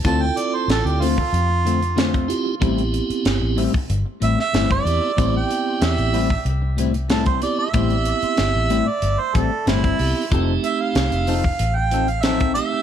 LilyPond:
<<
  \new Staff \with { instrumentName = "Harmonica" } { \time 4/4 \key a \minor \tempo 4 = 94 a''16 g''16 d''16 c''16 a'16 g'16 f'2 r8 | r2 r8 e''16 e''8 d''8.~ | d''16 g''8. e''4 r4 a'16 c''16 d''16 e''16~ | e''4.~ e''16 d''8 c''16 a'8 e'4 |
r8 e''16 f''4. g''8 f''16 e''8 e''8 | }
  \new Staff \with { instrumentName = "Tonewheel organ" } { \time 4/4 \key a \minor <c' e' f' a'>4. r2 <c' e' f' g'>8 | <b c' e' g'>4. r2 <b c' e' g'>8 | <b c' e' g'>4. r2 <b c' e' g'>8 | <b c' e' g'>4. r2 <b c' e' g'>8 |
<a c' ees' g'>4. r2 <a c' ees' g'>8 | }
  \new Staff \with { instrumentName = "Clean electric guitar" } { \time 4/4 \key a \minor <d a c' f'>16 r4 r16 <d a c' f'>16 r8. <d a c' f'>16 r16 <d a c' f'>16 <a c' f'>16 r8 | <a, g c' e'>16 r4 r16 <a, g c' e'>16 r8. <a, g c' e'>16 r16 <a, g c' e'>16 <g c'>16 r8 | <a, g c' e'>16 r4 r16 <a, g c' e'>16 r8. <a, g c' e'>16 r16 <a, g c' e'>16 <g c' e'>16 r8 | <a, g c' e'>16 r4 r16 <a, g c' e'>16 r8. <a, g c' e'>16 r16 <a, g c' e'>16 <g c' e'>16 r8 |
<f c' ees' a'>16 r4 r16 <f c' ees' a'>16 r8. <f c' ees' a'>16 r16 <f c' ees' a'>16 <c' ees' a'>16 r8 | }
  \new Staff \with { instrumentName = "Fingered electric bass" } { \clef bass \time 4/4 \key a \minor d,8 r8 a,,16 d,8. f,2 | a,,8. r16 g,,16 a,,8 r16 g,,16 r16 a,,16 r16 g,,8 e,16 r16 | a,,8 r8 e,16 a,,8. c,2 | a,,8. r16 g,,16 a,,8 r16 g,,16 r16 a,,16 r16 g,,8 c,16 r16 |
f,,8 r8 c,16 f,,8. a,,2 | }
  \new DrumStaff \with { instrumentName = "Drums" } \drummode { \time 4/4 <hh bd>8 hh8 <hh sn>16 hh16 hho16 bd16 hh8 hh16 hh16 <hh sn>16 <hh bd>16 hh8 | <hh bd>16 hh16 hh16 hh16 <hh sn>8 hho16 bd16 hh8 hh16 sn16 <hh sn>16 <hh bd>16 hh8 | <hh bd>8 hh8 <hh sn>16 hh16 hho16 bd16 hh8 hh16 hh16 <hh sn>16 <hh bd>16 hh8 | <hh bd>16 hh16 hh16 hh16 <hh sn>8 hh8 hh8 <hh bd>8 <hh sn>16 <hh bd>16 hho8 |
<hh bd>8 hh8 <hh sn>16 hh16 hho16 bd16 hh8 hh16 hh16 <hh sn>16 <hh bd>16 hh8 | }
>>